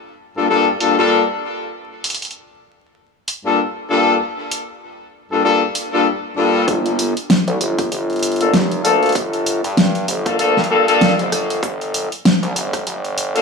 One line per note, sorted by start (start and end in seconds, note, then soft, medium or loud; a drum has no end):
0.36 0.48 G2 medium
0.36 0.48 A#3 medium
0.36 0.48 D4 medium
0.36 0.48 F4 medium
0.36 0.48 A4 medium
0.49 0.68 G2 medium
0.49 0.68 A#3 medium
0.49 0.68 D4 medium
0.49 0.68 F4 medium
0.49 0.68 A4 loud
0.80 0.96 G2 medium
0.80 0.96 A#3 medium
0.80 0.96 D4 medium
0.80 0.96 F4 medium
0.80 0.96 A4 medium
0.80 open hi-hat medium
0.98 1.23 G2 loud
0.98 1.23 A#3 medium
0.98 1.23 D4 medium
0.98 1.23 F4 medium
0.98 1.23 A4 loud
2.04 open hi-hat medium
2.10 open hi-hat soft
2.15 open hi-hat soft
2.22 open hi-hat soft
2.25 open hi-hat soft
2.31 open hi-hat soft
3.28 open hi-hat medium
3.45 3.59 G2 medium
3.45 3.59 A#3 medium
3.45 3.59 D4 medium
3.45 3.59 F4 medium
3.45 3.59 A4 medium
3.89 4.16 G2 medium
3.89 4.16 A#3 medium
3.89 4.16 D4 medium
3.89 4.16 F4 medium
3.89 4.16 A4 loud
4.51 open hi-hat medium
5.31 5.42 G2 medium
5.31 5.42 A#3 medium
5.31 5.42 D4 medium
5.31 5.42 F4 medium
5.31 5.42 A4 medium
5.44 5.63 G2 medium
5.44 5.63 A#3 medium
5.44 5.63 D4 medium
5.44 5.63 F4 medium
5.44 5.63 A4 loud
5.75 open hi-hat medium
5.93 6.07 G2 medium
5.93 6.07 A#3 medium
5.93 6.07 D4 medium
5.93 6.07 F4 medium
5.93 6.07 A4 medium
6.37 6.99 G2 medium
6.37 6.99 A#3 medium
6.37 6.99 D4 medium
6.37 6.99 F4 medium
6.37 6.99 A4 medium
6.68 7.14 G1 medium
6.68 kick loud
6.68 open hi-hat soft
6.86 open hi-hat soft
6.99 open hi-hat medium
7.17 open hi-hat soft
7.30 snare loud
7.30 open hi-hat soft
7.48 7.59 C2 medium
7.48 open hi-hat soft
7.61 7.90 G1 medium
7.61 open hi-hat medium
7.79 kick loud
7.79 cross-stick soft
7.79 open hi-hat soft
7.92 8.51 G1 medium
7.92 open hi-hat soft
8.10 open hi-hat soft
8.13 open hi-hat soft
8.16 open hi-hat soft
8.19 open hi-hat soft
8.23 open hi-hat medium
8.27 open hi-hat soft
8.32 open hi-hat soft
8.36 open hi-hat soft
8.40 8.54 A#3 medium
8.40 8.54 D4 medium
8.40 8.54 F4 medium
8.40 8.54 A4 medium
8.40 open hi-hat soft
8.54 8.83 F1 medium
8.54 snare loud
8.54 open hi-hat soft
8.72 open hi-hat soft
8.84 9.13 D2 medium
8.84 9.11 A#3 medium
8.84 9.11 D4 medium
8.84 9.11 F4 medium
8.84 9.11 A4 loud
8.84 open hi-hat medium
9.03 open hi-hat soft
9.06 open hi-hat soft
9.09 open hi-hat soft
9.12 9.61 G1 loud
9.12 kick loud
9.12 open hi-hat soft
9.16 open hi-hat soft
9.33 open hi-hat soft
9.46 open hi-hat medium
9.64 10.06 G2 medium
9.64 open hi-hat soft
9.77 snare loud
9.77 open hi-hat soft
9.95 open hi-hat soft
10.08 10.37 G1 loud
10.08 open hi-hat medium
10.26 10.37 A#3 medium
10.26 10.37 D4 medium
10.26 10.37 F4 medium
10.26 10.37 A4 medium
10.26 kick loud
10.26 cross-stick soft
10.26 open hi-hat soft
10.39 10.54 D2 medium
10.39 10.57 A#3 loud
10.39 10.57 D4 medium
10.39 10.57 F4 medium
10.39 10.57 A4 loud
10.39 open hi-hat soft
10.57 10.68 G2 loud
10.57 snare soft
10.64 open hi-hat soft
10.70 11.16 G2 loud
10.70 10.85 A#3 medium
10.70 10.85 D4 medium
10.70 10.85 F4 medium
10.70 10.85 A4 medium
10.88 11.13 A#3 loud
10.88 11.13 D4 medium
10.88 11.13 F4 medium
10.88 11.13 A4 loud
10.88 open hi-hat soft
11.01 snare loud
11.01 open hi-hat soft
11.19 11.61 G1 loud
11.19 open hi-hat soft
11.32 cross-stick medium
11.32 open hi-hat medium
11.50 open hi-hat soft
11.63 12.09 G1 loud
11.63 kick loud
11.63 open hi-hat soft
11.81 open hi-hat soft
11.94 open hi-hat medium
12.12 open hi-hat soft
12.25 snare loud
12.25 open hi-hat soft
12.43 12.54 C2 loud
12.43 open hi-hat soft
12.56 12.85 G1 loud
12.56 open hi-hat medium
12.73 kick loud
12.73 cross-stick soft
12.73 open hi-hat soft
12.87 13.42 G1 loud
12.87 open hi-hat soft
13.05 open hi-hat soft
13.18 open hi-hat medium
13.35 13.42 A#3 medium
13.35 13.42 D4 medium
13.35 13.42 F4 medium
13.35 13.42 A4 medium
13.35 open hi-hat soft